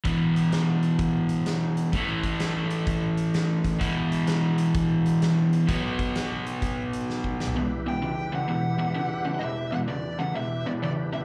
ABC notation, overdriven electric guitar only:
X:1
M:4/4
L:1/8
Q:"Swing" 1/4=128
K:Em
V:1 name="Overdriven electric guitar" clef=bass
[E,,B,,E,]8 | [A,,E,A,]8 | [E,,B,,E,]8 | [B,,F,B,]8 |
[E,,B,,] [E,,B,,] [E,,^C,] [E,,C,] [E,,B,,] [E,,B,,] [E,,C,] [E,,C,] | [E,,B,,] [E,,B,,] [E,,^C,] [E,,C,] [E,,B,,] [E,,B,,] [E,,C,] [E,,C,] |]